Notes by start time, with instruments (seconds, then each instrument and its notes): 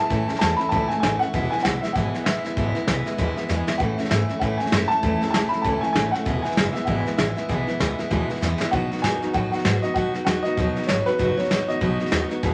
Already playing: steel-string acoustic guitar E4, upright piano A5
0.00 steel-string acoustic guitar G#3 B3
0.10 steel-string acoustic guitar A2 E3 A3 C#4 E4, upright bass A2, kick, snare
0.28 steel-string acoustic guitar A3 C#4 E4, snare
0.35 upright piano A5, snare
0.40 upright bass E2, steel-string acoustic guitar E3 A3 C#4 E4, snare, hi-hat pedal
0.57 steel-string acoustic guitar C#4 E4, upright piano B5, snare
0.61 steel-string acoustic guitar A3
0.69 upright bass C#2, steel-string acoustic guitar A2 E3 A3 C#4 E4, upright piano A5, kick, snare
0.88 steel-string acoustic guitar A3 C#4 E4, upright piano G#5, muted upright bass stroke, snare
1.00 upright bass A1, steel-string acoustic guitar E3 A3 C#4, upright piano G#5, snare, hi-hat pedal
1.04 steel-string acoustic guitar E4
1.19 steel-string acoustic guitar A3 C#4 E4, upright piano F#5, snare
1.33 upright bass E1, steel-string acoustic guitar E2 B2 E3 G#3 B3 E4, kick, snare
1.51 steel-string acoustic guitar E3 G#3 B3 E4, upright piano G#5, snare
1.59 snare
1.63 upright bass B1, steel-string acoustic guitar E3 G#3 B3 E4, upright piano F#5, snare, hi-hat pedal
1.81 steel-string acoustic guitar G#3 B3 E4, upright piano E5, muted upright bass stroke, snare
1.85 steel-string acoustic guitar E3
1.93 upright bass G#1, steel-string acoustic guitar E2 B2 E3 G#3 B3, upright piano F#5, kick, snare
1.97 steel-string acoustic guitar E4
2.13 steel-string acoustic guitar E3 G#3 B3 E4, muted upright bass stroke, snare
2.24 upright bass A1, steel-string acoustic guitar E3 G#3 B3 E4, upright piano E5, snare, hi-hat pedal
2.44 steel-string acoustic guitar E3 G#3 B3 E4, muted upright bass stroke, snare
2.57 upright bass G#1, steel-string acoustic guitar E2 B2 E3 G#3 B3 E4, kick, snare
2.75 steel-string acoustic guitar E3 G#3 B3 E4, muted upright bass stroke, snare
2.88 upright bass B1, steel-string acoustic guitar E3 G#3 B3 E4, snare, hi-hat pedal
3.06 steel-string acoustic guitar E3 G#3 B3 E4, muted upright bass stroke, snare
3.18 upright bass D#2, steel-string acoustic guitar E2 B2 E3 G#3 B3 E4, kick, snare
3.36 steel-string acoustic guitar E3 G#3 B3 E4, muted upright bass stroke, snare
3.48 upright bass E2, steel-string acoustic guitar E3 G#3 B3 E4, snare, hi-hat pedal
3.67 steel-string acoustic guitar E3 G#3 B3 E4, muted upright bass stroke, snare
3.78 steel-string acoustic guitar A2 E3 A3 C#4 E4, upright bass A2, upright piano F#5, kick, snare
3.98 steel-string acoustic guitar A3 C#4 E4, snare
4.05 snare
4.10 upright bass G#2, steel-string acoustic guitar E3 A3 C#4 E4, upright piano E5, snare, hi-hat pedal
4.29 steel-string acoustic guitar A3 C#4 E4, snare
4.39 steel-string acoustic guitar A2 E3 A3 C#4 E4, upright bass A2, upright piano F#5, kick, snare
4.58 steel-string acoustic guitar C#4 E4, upright piano G#5, muted upright bass stroke, snare
4.62 steel-string acoustic guitar A3
4.66 snare
4.72 upright bass F#2, steel-string acoustic guitar E3 A3 C#4 E4, snare, hi-hat pedal
4.88 steel-string acoustic guitar C#4 E4, upright piano A5, muted upright bass stroke, snare
4.92 steel-string acoustic guitar A3
5.03 upright bass E2, steel-string acoustic guitar A2 E3 A3 C#4 E4, kick, snare
5.21 steel-string acoustic guitar A3 C#4 E4, snare
5.28 upright piano A5, snare
5.33 upright bass B1, steel-string acoustic guitar E3 A3 C#4 E4, snare, hi-hat pedal
5.49 steel-string acoustic guitar E4, upright piano B5, muted upright bass stroke, snare
5.53 steel-string acoustic guitar A3 C#4
5.62 upright bass C#2, steel-string acoustic guitar A2 E3 A3 C#4, upright piano A5, kick, snare
5.66 steel-string acoustic guitar E4
5.81 steel-string acoustic guitar C#4 E4, upright piano G#5, muted upright bass stroke, snare
5.85 steel-string acoustic guitar A3
5.93 upright bass A1, steel-string acoustic guitar E3 A3 C#4 E4, upright piano G#5, snare, hi-hat pedal
6.11 steel-string acoustic guitar A3 C#4 E4, upright piano F#5, snare
6.25 upright bass E1, steel-string acoustic guitar E2 B2 E3 G#3 B3 E4, kick, snare
6.42 steel-string acoustic guitar E3 G#3 B3 E4, upright piano G#5, muted upright bass stroke, snare
6.51 snare
6.56 upright bass F#1, steel-string acoustic guitar E3 G#3 B3 E4, snare, hi-hat pedal
6.73 steel-string acoustic guitar E3 G#3 B3 E4, upright piano E5, muted upright bass stroke, snare
6.85 upright bass G#1, steel-string acoustic guitar E2 B2 E3 G#3 B3 E4, upright piano F#5, kick, snare
7.06 steel-string acoustic guitar E3 G#3 B3 E4, snare
7.17 upright bass A1, steel-string acoustic guitar E3 G#3 B3 E4, upright piano E5, snare, hi-hat pedal
7.36 steel-string acoustic guitar E3 G#3 B3 E4, snare
7.49 upright bass B1, steel-string acoustic guitar E2 B2 E3 G#3 B3 E4, kick, snare
7.67 steel-string acoustic guitar E3 G#3 B3 E4, snare
7.80 upright bass C#2, steel-string acoustic guitar E3 G#3 B3 E4, snare, hi-hat pedal
7.98 steel-string acoustic guitar E3 G#3 B3 E4, snare
8.11 upright bass D#2, steel-string acoustic guitar E2 B2 E3 G#3 B3 E4, kick, snare
8.30 steel-string acoustic guitar E3 G#3 B3 E4, snare
8.36 snare
8.41 upright bass E2, steel-string acoustic guitar E3 G#3 B3 E4, snare, hi-hat pedal
8.60 steel-string acoustic guitar E3 G#3 B3 E4, snare
8.71 steel-string acoustic guitar B2 F#3 B3 D#4 F#4, upright bass B2, upright piano F#5, kick, snare
8.91 steel-string acoustic guitar B3 D#4 F#4, muted upright bass stroke, snare
8.98 snare
9.02 upright bass A#2, steel-string acoustic guitar F#3 B3 D#4 F#4, upright piano G#5, snare, hi-hat pedal
9.22 steel-string acoustic guitar B3 D#4 F#4, snare
9.33 upright bass A2, steel-string acoustic guitar B2 F#3 B3 D#4 F#4, upright piano F#5, kick, snare
9.52 steel-string acoustic guitar B3 D#4 F#4, upright piano F#5, snare
9.59 snare
9.65 upright bass G#2, steel-string acoustic guitar F#3 B3 D#4 F#4, snare, hi-hat pedal
9.82 steel-string acoustic guitar B3 D#4 F#4, upright piano D#5, snare
9.94 upright bass F#2, steel-string acoustic guitar B2 F#3 B3 D#4 F#4, upright piano F#5, kick, snare
10.14 steel-string acoustic guitar B3 D#4 F#4, snare
10.25 upright bass E2, steel-string acoustic guitar F#3 B3 D#4 F#4, upright piano F#5, snare, hi-hat pedal
10.43 steel-string acoustic guitar D#4 F#4, upright piano D#5, snare
10.47 steel-string acoustic guitar B3
10.57 upright bass D#2, steel-string acoustic guitar B2 F#3 B3 D#4 F#4, kick, snare
10.76 steel-string acoustic guitar B3 D#4 F#4, muted upright bass stroke, snare
10.83 snare
10.87 upright bass G#1, steel-string acoustic guitar F#3 B3 D#4 F#4, upright piano C#5, snare, hi-hat pedal
11.06 steel-string acoustic guitar B3 D#4 F#4, upright piano B4, snare
11.18 upright bass F#1, steel-string acoustic guitar B2 F#3 B3 D#4 F#4, kick, snare
11.37 steel-string acoustic guitar B3 D#4 F#4, upright piano C#5, muted upright bass stroke, snare
11.45 snare
11.50 upright bass A1, steel-string acoustic guitar F#3 B3 D#4 F#4, snare, hi-hat pedal
11.68 steel-string acoustic guitar B3 D#4 F#4, upright piano D#5, muted upright bass stroke, snare
11.81 upright bass B1, steel-string acoustic guitar B2 F#3 B3 D#4 F#4, kick, snare
11.99 steel-string acoustic guitar B3 D#4 F#4, snare
12.06 snare
12.11 upright bass D#2, steel-string acoustic guitar F#3 B3 D#4 F#4, snare, hi-hat pedal
12.30 steel-string acoustic guitar B3 D#4 F#4, muted upright bass stroke, snare
12.43 steel-string acoustic guitar E2 B2 E3 B3 E4 G#4, upright bass E2, kick, snare